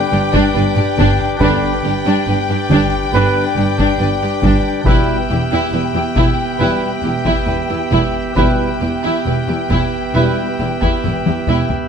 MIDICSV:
0, 0, Header, 1, 11, 480
1, 0, Start_track
1, 0, Tempo, 864553
1, 781, Time_signature, 4, 2, 24, 8
1, 3664, Tempo, 887574
1, 6521, End_track
2, 0, Start_track
2, 0, Title_t, "Violin section"
2, 0, Program_c, 0, 48
2, 0, Note_on_c, 0, 79, 69
2, 760, Note_off_c, 0, 79, 0
2, 779, Note_on_c, 0, 79, 61
2, 2674, Note_off_c, 0, 79, 0
2, 2695, Note_on_c, 0, 79, 49
2, 4595, Note_off_c, 0, 79, 0
2, 4618, Note_on_c, 0, 79, 40
2, 6409, Note_off_c, 0, 79, 0
2, 6521, End_track
3, 0, Start_track
3, 0, Title_t, "Trumpet"
3, 0, Program_c, 1, 56
3, 779, Note_on_c, 1, 71, 57
3, 958, Note_off_c, 1, 71, 0
3, 1738, Note_on_c, 1, 71, 63
3, 1917, Note_off_c, 1, 71, 0
3, 2695, Note_on_c, 1, 71, 48
3, 2876, Note_off_c, 1, 71, 0
3, 3658, Note_on_c, 1, 71, 45
3, 3837, Note_off_c, 1, 71, 0
3, 4614, Note_on_c, 1, 71, 43
3, 4798, Note_off_c, 1, 71, 0
3, 5584, Note_on_c, 1, 71, 38
3, 5763, Note_off_c, 1, 71, 0
3, 6521, End_track
4, 0, Start_track
4, 0, Title_t, "Pipe organ"
4, 0, Program_c, 2, 19
4, 0, Note_on_c, 2, 62, 70
4, 0, Note_on_c, 2, 67, 76
4, 0, Note_on_c, 2, 71, 74
4, 0, Note_on_c, 2, 74, 79
4, 757, Note_off_c, 2, 74, 0
4, 758, Note_off_c, 2, 62, 0
4, 758, Note_off_c, 2, 71, 0
4, 763, Note_off_c, 2, 67, 0
4, 769, Note_on_c, 2, 71, 62
4, 773, Note_on_c, 2, 62, 69
4, 773, Note_on_c, 2, 74, 70
4, 774, Note_on_c, 2, 67, 62
4, 2670, Note_off_c, 2, 71, 0
4, 2671, Note_off_c, 2, 62, 0
4, 2671, Note_off_c, 2, 74, 0
4, 2672, Note_off_c, 2, 67, 0
4, 2696, Note_on_c, 2, 71, 54
4, 2699, Note_on_c, 2, 59, 55
4, 2700, Note_on_c, 2, 67, 57
4, 2701, Note_on_c, 2, 76, 54
4, 4595, Note_off_c, 2, 71, 0
4, 4597, Note_off_c, 2, 67, 0
4, 4605, Note_off_c, 2, 59, 0
4, 4608, Note_off_c, 2, 76, 0
4, 4613, Note_on_c, 2, 71, 42
4, 4616, Note_on_c, 2, 59, 46
4, 4619, Note_on_c, 2, 76, 42
4, 4620, Note_on_c, 2, 67, 46
4, 6516, Note_off_c, 2, 71, 0
4, 6517, Note_off_c, 2, 59, 0
4, 6519, Note_off_c, 2, 67, 0
4, 6519, Note_off_c, 2, 76, 0
4, 6521, End_track
5, 0, Start_track
5, 0, Title_t, "Violin section"
5, 0, Program_c, 3, 48
5, 66, Note_on_c, 3, 67, 50
5, 110, Note_off_c, 3, 67, 0
5, 179, Note_on_c, 3, 62, 65
5, 292, Note_off_c, 3, 62, 0
5, 299, Note_on_c, 3, 71, 54
5, 344, Note_off_c, 3, 71, 0
5, 424, Note_on_c, 3, 67, 57
5, 469, Note_off_c, 3, 67, 0
5, 545, Note_on_c, 3, 62, 68
5, 655, Note_off_c, 3, 62, 0
5, 785, Note_on_c, 3, 62, 67
5, 894, Note_off_c, 3, 62, 0
5, 1024, Note_on_c, 3, 67, 45
5, 1068, Note_off_c, 3, 67, 0
5, 1144, Note_on_c, 3, 62, 61
5, 1253, Note_off_c, 3, 62, 0
5, 1258, Note_on_c, 3, 71, 42
5, 1302, Note_off_c, 3, 71, 0
5, 1386, Note_on_c, 3, 67, 47
5, 1430, Note_off_c, 3, 67, 0
5, 1502, Note_on_c, 3, 62, 61
5, 1612, Note_off_c, 3, 62, 0
5, 1744, Note_on_c, 3, 62, 56
5, 1853, Note_off_c, 3, 62, 0
5, 1980, Note_on_c, 3, 67, 43
5, 2024, Note_off_c, 3, 67, 0
5, 2098, Note_on_c, 3, 62, 54
5, 2209, Note_off_c, 3, 62, 0
5, 2223, Note_on_c, 3, 71, 55
5, 2268, Note_off_c, 3, 71, 0
5, 2348, Note_on_c, 3, 67, 47
5, 2392, Note_off_c, 3, 67, 0
5, 2467, Note_on_c, 3, 62, 50
5, 2574, Note_off_c, 3, 62, 0
5, 2712, Note_on_c, 3, 64, 59
5, 2817, Note_off_c, 3, 64, 0
5, 2948, Note_on_c, 3, 67, 40
5, 2992, Note_off_c, 3, 67, 0
5, 3069, Note_on_c, 3, 64, 57
5, 3176, Note_off_c, 3, 64, 0
5, 3191, Note_on_c, 3, 71, 35
5, 3235, Note_off_c, 3, 71, 0
5, 3309, Note_on_c, 3, 67, 38
5, 3353, Note_off_c, 3, 67, 0
5, 3422, Note_on_c, 3, 64, 59
5, 3534, Note_off_c, 3, 64, 0
5, 3667, Note_on_c, 3, 64, 53
5, 3774, Note_off_c, 3, 64, 0
5, 3901, Note_on_c, 3, 67, 37
5, 3944, Note_off_c, 3, 67, 0
5, 4018, Note_on_c, 3, 64, 48
5, 4128, Note_off_c, 3, 64, 0
5, 4133, Note_on_c, 3, 71, 44
5, 4176, Note_off_c, 3, 71, 0
5, 4255, Note_on_c, 3, 67, 34
5, 4298, Note_off_c, 3, 67, 0
5, 4373, Note_on_c, 3, 64, 51
5, 4487, Note_off_c, 3, 64, 0
5, 4614, Note_on_c, 3, 64, 46
5, 4728, Note_off_c, 3, 64, 0
5, 4857, Note_on_c, 3, 67, 37
5, 4900, Note_off_c, 3, 67, 0
5, 4979, Note_on_c, 3, 64, 52
5, 5092, Note_off_c, 3, 64, 0
5, 5104, Note_on_c, 3, 71, 32
5, 5148, Note_off_c, 3, 71, 0
5, 5221, Note_on_c, 3, 67, 31
5, 5264, Note_off_c, 3, 67, 0
5, 5343, Note_on_c, 3, 64, 48
5, 5454, Note_off_c, 3, 64, 0
5, 5584, Note_on_c, 3, 64, 49
5, 5695, Note_off_c, 3, 64, 0
5, 5822, Note_on_c, 3, 67, 33
5, 5866, Note_off_c, 3, 67, 0
5, 5945, Note_on_c, 3, 64, 44
5, 6055, Note_off_c, 3, 64, 0
5, 6071, Note_on_c, 3, 71, 32
5, 6114, Note_off_c, 3, 71, 0
5, 6189, Note_on_c, 3, 67, 32
5, 6232, Note_off_c, 3, 67, 0
5, 6308, Note_on_c, 3, 64, 44
5, 6416, Note_off_c, 3, 64, 0
5, 6521, End_track
6, 0, Start_track
6, 0, Title_t, "Viola section"
6, 0, Program_c, 4, 48
6, 67, Note_on_c, 4, 62, 54
6, 111, Note_off_c, 4, 62, 0
6, 188, Note_on_c, 4, 62, 68
6, 296, Note_off_c, 4, 62, 0
6, 309, Note_on_c, 4, 62, 47
6, 353, Note_off_c, 4, 62, 0
6, 427, Note_on_c, 4, 62, 50
6, 471, Note_off_c, 4, 62, 0
6, 548, Note_on_c, 4, 62, 64
6, 656, Note_off_c, 4, 62, 0
6, 787, Note_on_c, 4, 62, 68
6, 895, Note_off_c, 4, 62, 0
6, 1025, Note_on_c, 4, 62, 45
6, 1069, Note_off_c, 4, 62, 0
6, 1145, Note_on_c, 4, 62, 51
6, 1254, Note_off_c, 4, 62, 0
6, 1267, Note_on_c, 4, 62, 42
6, 1312, Note_off_c, 4, 62, 0
6, 1389, Note_on_c, 4, 62, 47
6, 1433, Note_off_c, 4, 62, 0
6, 1508, Note_on_c, 4, 62, 64
6, 1615, Note_off_c, 4, 62, 0
6, 1747, Note_on_c, 4, 62, 70
6, 1855, Note_off_c, 4, 62, 0
6, 1985, Note_on_c, 4, 62, 42
6, 2029, Note_off_c, 4, 62, 0
6, 2103, Note_on_c, 4, 62, 53
6, 2212, Note_off_c, 4, 62, 0
6, 2223, Note_on_c, 4, 62, 41
6, 2267, Note_off_c, 4, 62, 0
6, 2343, Note_on_c, 4, 62, 44
6, 2388, Note_off_c, 4, 62, 0
6, 2460, Note_on_c, 4, 62, 51
6, 2570, Note_off_c, 4, 62, 0
6, 2702, Note_on_c, 4, 64, 49
6, 2811, Note_off_c, 4, 64, 0
6, 2940, Note_on_c, 4, 64, 41
6, 2985, Note_off_c, 4, 64, 0
6, 3058, Note_on_c, 4, 64, 49
6, 3170, Note_off_c, 4, 64, 0
6, 3183, Note_on_c, 4, 64, 37
6, 3227, Note_off_c, 4, 64, 0
6, 3300, Note_on_c, 4, 64, 41
6, 3345, Note_off_c, 4, 64, 0
6, 3417, Note_on_c, 4, 64, 53
6, 3531, Note_off_c, 4, 64, 0
6, 3661, Note_on_c, 4, 64, 53
6, 3771, Note_off_c, 4, 64, 0
6, 3902, Note_on_c, 4, 64, 34
6, 3946, Note_off_c, 4, 64, 0
6, 4019, Note_on_c, 4, 64, 50
6, 4129, Note_off_c, 4, 64, 0
6, 4140, Note_on_c, 4, 64, 35
6, 4183, Note_off_c, 4, 64, 0
6, 4257, Note_on_c, 4, 64, 34
6, 4300, Note_off_c, 4, 64, 0
6, 4376, Note_on_c, 4, 64, 43
6, 4488, Note_off_c, 4, 64, 0
6, 4616, Note_on_c, 4, 64, 48
6, 4729, Note_off_c, 4, 64, 0
6, 4859, Note_on_c, 4, 64, 32
6, 4902, Note_off_c, 4, 64, 0
6, 4982, Note_on_c, 4, 64, 40
6, 5094, Note_off_c, 4, 64, 0
6, 5104, Note_on_c, 4, 64, 33
6, 5148, Note_off_c, 4, 64, 0
6, 5224, Note_on_c, 4, 64, 32
6, 5267, Note_off_c, 4, 64, 0
6, 5342, Note_on_c, 4, 64, 42
6, 5453, Note_off_c, 4, 64, 0
6, 5584, Note_on_c, 4, 64, 44
6, 5695, Note_off_c, 4, 64, 0
6, 5823, Note_on_c, 4, 64, 34
6, 5866, Note_off_c, 4, 64, 0
6, 5942, Note_on_c, 4, 64, 38
6, 6054, Note_off_c, 4, 64, 0
6, 6066, Note_on_c, 4, 64, 32
6, 6109, Note_off_c, 4, 64, 0
6, 6185, Note_on_c, 4, 64, 31
6, 6228, Note_off_c, 4, 64, 0
6, 6301, Note_on_c, 4, 64, 42
6, 6412, Note_off_c, 4, 64, 0
6, 6521, End_track
7, 0, Start_track
7, 0, Title_t, "French horn section"
7, 0, Program_c, 5, 60
7, 781, Note_on_c, 5, 62, 57
7, 782, Note_on_c, 5, 59, 50
7, 959, Note_off_c, 5, 62, 0
7, 960, Note_off_c, 5, 59, 0
7, 1744, Note_on_c, 5, 59, 53
7, 1745, Note_on_c, 5, 62, 56
7, 1920, Note_off_c, 5, 59, 0
7, 1920, Note_off_c, 5, 62, 0
7, 2703, Note_on_c, 5, 64, 50
7, 2705, Note_on_c, 5, 59, 50
7, 2880, Note_off_c, 5, 64, 0
7, 2881, Note_off_c, 5, 59, 0
7, 3670, Note_on_c, 5, 59, 42
7, 3670, Note_on_c, 5, 64, 44
7, 3843, Note_off_c, 5, 59, 0
7, 3843, Note_off_c, 5, 64, 0
7, 4618, Note_on_c, 5, 59, 39
7, 4620, Note_on_c, 5, 64, 40
7, 4800, Note_off_c, 5, 59, 0
7, 4801, Note_off_c, 5, 64, 0
7, 5584, Note_on_c, 5, 64, 39
7, 5587, Note_on_c, 5, 59, 40
7, 5763, Note_off_c, 5, 64, 0
7, 5765, Note_off_c, 5, 59, 0
7, 6521, End_track
8, 0, Start_track
8, 0, Title_t, "Trombone section"
8, 0, Program_c, 6, 61
8, 786, Note_on_c, 6, 55, 62
8, 787, Note_on_c, 6, 50, 67
8, 962, Note_off_c, 6, 50, 0
8, 962, Note_off_c, 6, 55, 0
8, 1739, Note_on_c, 6, 50, 57
8, 1741, Note_on_c, 6, 55, 55
8, 1917, Note_off_c, 6, 50, 0
8, 1918, Note_off_c, 6, 55, 0
8, 2708, Note_on_c, 6, 55, 58
8, 2709, Note_on_c, 6, 47, 49
8, 2882, Note_off_c, 6, 55, 0
8, 2883, Note_off_c, 6, 47, 0
8, 3670, Note_on_c, 6, 55, 42
8, 3671, Note_on_c, 6, 47, 42
8, 3843, Note_off_c, 6, 55, 0
8, 3844, Note_off_c, 6, 47, 0
8, 4619, Note_on_c, 6, 55, 37
8, 4622, Note_on_c, 6, 47, 42
8, 4800, Note_off_c, 6, 55, 0
8, 4802, Note_off_c, 6, 47, 0
8, 5582, Note_on_c, 6, 47, 40
8, 5588, Note_on_c, 6, 55, 40
8, 5762, Note_off_c, 6, 47, 0
8, 5765, Note_off_c, 6, 55, 0
8, 6521, End_track
9, 0, Start_track
9, 0, Title_t, "Cello section"
9, 0, Program_c, 7, 48
9, 66, Note_on_c, 7, 43, 56
9, 111, Note_off_c, 7, 43, 0
9, 187, Note_on_c, 7, 43, 63
9, 232, Note_off_c, 7, 43, 0
9, 306, Note_on_c, 7, 43, 51
9, 350, Note_off_c, 7, 43, 0
9, 426, Note_on_c, 7, 43, 49
9, 470, Note_off_c, 7, 43, 0
9, 550, Note_on_c, 7, 43, 66
9, 594, Note_off_c, 7, 43, 0
9, 786, Note_on_c, 7, 43, 72
9, 830, Note_off_c, 7, 43, 0
9, 1028, Note_on_c, 7, 43, 47
9, 1073, Note_off_c, 7, 43, 0
9, 1146, Note_on_c, 7, 43, 64
9, 1190, Note_off_c, 7, 43, 0
9, 1266, Note_on_c, 7, 43, 45
9, 1311, Note_off_c, 7, 43, 0
9, 1388, Note_on_c, 7, 43, 47
9, 1432, Note_off_c, 7, 43, 0
9, 1505, Note_on_c, 7, 43, 61
9, 1550, Note_off_c, 7, 43, 0
9, 1747, Note_on_c, 7, 43, 68
9, 1791, Note_off_c, 7, 43, 0
9, 1985, Note_on_c, 7, 43, 48
9, 2029, Note_off_c, 7, 43, 0
9, 2105, Note_on_c, 7, 43, 57
9, 2149, Note_off_c, 7, 43, 0
9, 2222, Note_on_c, 7, 43, 43
9, 2266, Note_off_c, 7, 43, 0
9, 2347, Note_on_c, 7, 43, 39
9, 2392, Note_off_c, 7, 43, 0
9, 2463, Note_on_c, 7, 43, 59
9, 2507, Note_off_c, 7, 43, 0
9, 2703, Note_on_c, 7, 40, 61
9, 2748, Note_off_c, 7, 40, 0
9, 2944, Note_on_c, 7, 40, 41
9, 2989, Note_off_c, 7, 40, 0
9, 3062, Note_on_c, 7, 40, 56
9, 3106, Note_off_c, 7, 40, 0
9, 3182, Note_on_c, 7, 40, 41
9, 3226, Note_off_c, 7, 40, 0
9, 3304, Note_on_c, 7, 40, 38
9, 3349, Note_off_c, 7, 40, 0
9, 3421, Note_on_c, 7, 40, 53
9, 3466, Note_off_c, 7, 40, 0
9, 3664, Note_on_c, 7, 40, 47
9, 3707, Note_off_c, 7, 40, 0
9, 3895, Note_on_c, 7, 40, 36
9, 3938, Note_off_c, 7, 40, 0
9, 4020, Note_on_c, 7, 40, 50
9, 4063, Note_off_c, 7, 40, 0
9, 4136, Note_on_c, 7, 40, 34
9, 4179, Note_off_c, 7, 40, 0
9, 4258, Note_on_c, 7, 40, 33
9, 4302, Note_off_c, 7, 40, 0
9, 4379, Note_on_c, 7, 40, 51
9, 4422, Note_off_c, 7, 40, 0
9, 4619, Note_on_c, 7, 40, 48
9, 4663, Note_off_c, 7, 40, 0
9, 4863, Note_on_c, 7, 40, 35
9, 4906, Note_off_c, 7, 40, 0
9, 4985, Note_on_c, 7, 40, 45
9, 5028, Note_off_c, 7, 40, 0
9, 5103, Note_on_c, 7, 40, 33
9, 5146, Note_off_c, 7, 40, 0
9, 5224, Note_on_c, 7, 40, 35
9, 5267, Note_off_c, 7, 40, 0
9, 5347, Note_on_c, 7, 40, 48
9, 5390, Note_off_c, 7, 40, 0
9, 5590, Note_on_c, 7, 40, 44
9, 5633, Note_off_c, 7, 40, 0
9, 5828, Note_on_c, 7, 40, 35
9, 5872, Note_off_c, 7, 40, 0
9, 5945, Note_on_c, 7, 40, 45
9, 5989, Note_off_c, 7, 40, 0
9, 6069, Note_on_c, 7, 40, 29
9, 6112, Note_off_c, 7, 40, 0
9, 6190, Note_on_c, 7, 40, 30
9, 6233, Note_off_c, 7, 40, 0
9, 6309, Note_on_c, 7, 40, 44
9, 6352, Note_off_c, 7, 40, 0
9, 6521, End_track
10, 0, Start_track
10, 0, Title_t, "Double bass section"
10, 0, Program_c, 8, 48
10, 70, Note_on_c, 8, 31, 57
10, 115, Note_off_c, 8, 31, 0
10, 307, Note_on_c, 8, 31, 51
10, 351, Note_off_c, 8, 31, 0
10, 545, Note_on_c, 8, 31, 70
10, 590, Note_off_c, 8, 31, 0
10, 786, Note_on_c, 8, 31, 66
10, 830, Note_off_c, 8, 31, 0
10, 1021, Note_on_c, 8, 31, 47
10, 1066, Note_off_c, 8, 31, 0
10, 1263, Note_on_c, 8, 31, 45
10, 1308, Note_off_c, 8, 31, 0
10, 1504, Note_on_c, 8, 31, 64
10, 1548, Note_off_c, 8, 31, 0
10, 1742, Note_on_c, 8, 31, 71
10, 1786, Note_off_c, 8, 31, 0
10, 1980, Note_on_c, 8, 31, 47
10, 2024, Note_off_c, 8, 31, 0
10, 2222, Note_on_c, 8, 31, 43
10, 2266, Note_off_c, 8, 31, 0
10, 2459, Note_on_c, 8, 31, 57
10, 2504, Note_off_c, 8, 31, 0
10, 2700, Note_on_c, 8, 28, 61
10, 2744, Note_off_c, 8, 28, 0
10, 2940, Note_on_c, 8, 28, 41
10, 2984, Note_off_c, 8, 28, 0
10, 3181, Note_on_c, 8, 28, 37
10, 3225, Note_off_c, 8, 28, 0
10, 3421, Note_on_c, 8, 28, 50
10, 3466, Note_off_c, 8, 28, 0
10, 3660, Note_on_c, 8, 28, 55
10, 3704, Note_off_c, 8, 28, 0
10, 3897, Note_on_c, 8, 28, 41
10, 3940, Note_off_c, 8, 28, 0
10, 4136, Note_on_c, 8, 28, 35
10, 4180, Note_off_c, 8, 28, 0
10, 4373, Note_on_c, 8, 28, 49
10, 4417, Note_off_c, 8, 28, 0
10, 4619, Note_on_c, 8, 28, 47
10, 4663, Note_off_c, 8, 28, 0
10, 4863, Note_on_c, 8, 28, 30
10, 4906, Note_off_c, 8, 28, 0
10, 5104, Note_on_c, 8, 28, 35
10, 5148, Note_off_c, 8, 28, 0
10, 5343, Note_on_c, 8, 28, 44
10, 5386, Note_off_c, 8, 28, 0
10, 5582, Note_on_c, 8, 28, 46
10, 5625, Note_off_c, 8, 28, 0
10, 5823, Note_on_c, 8, 28, 31
10, 5866, Note_off_c, 8, 28, 0
10, 6070, Note_on_c, 8, 28, 31
10, 6113, Note_off_c, 8, 28, 0
10, 6305, Note_on_c, 8, 28, 46
10, 6349, Note_off_c, 8, 28, 0
10, 6521, End_track
11, 0, Start_track
11, 0, Title_t, "Taiko and cinematic ensemble drums"
11, 184, Note_on_c, 9, 41, 75
11, 239, Note_off_c, 9, 41, 0
11, 427, Note_on_c, 9, 47, 46
11, 482, Note_off_c, 9, 47, 0
11, 546, Note_on_c, 9, 41, 75
11, 602, Note_off_c, 9, 41, 0
11, 666, Note_on_c, 9, 47, 40
11, 722, Note_off_c, 9, 47, 0
11, 781, Note_on_c, 9, 41, 91
11, 836, Note_off_c, 9, 41, 0
11, 1502, Note_on_c, 9, 41, 80
11, 1557, Note_off_c, 9, 41, 0
11, 2101, Note_on_c, 9, 41, 70
11, 2157, Note_off_c, 9, 41, 0
11, 2459, Note_on_c, 9, 41, 70
11, 2515, Note_off_c, 9, 41, 0
11, 2698, Note_on_c, 9, 41, 86
11, 2753, Note_off_c, 9, 41, 0
11, 3421, Note_on_c, 9, 41, 70
11, 3477, Note_off_c, 9, 41, 0
11, 4020, Note_on_c, 9, 41, 65
11, 4074, Note_off_c, 9, 41, 0
11, 4379, Note_on_c, 9, 41, 61
11, 4433, Note_off_c, 9, 41, 0
11, 4622, Note_on_c, 9, 41, 69
11, 4677, Note_off_c, 9, 41, 0
11, 5345, Note_on_c, 9, 41, 62
11, 5399, Note_off_c, 9, 41, 0
11, 5947, Note_on_c, 9, 41, 53
11, 6001, Note_off_c, 9, 41, 0
11, 6065, Note_on_c, 9, 47, 56
11, 6119, Note_off_c, 9, 47, 0
11, 6185, Note_on_c, 9, 48, 65
11, 6239, Note_off_c, 9, 48, 0
11, 6298, Note_on_c, 9, 45, 63
11, 6353, Note_off_c, 9, 45, 0
11, 6419, Note_on_c, 9, 43, 65
11, 6473, Note_off_c, 9, 43, 0
11, 6521, End_track
0, 0, End_of_file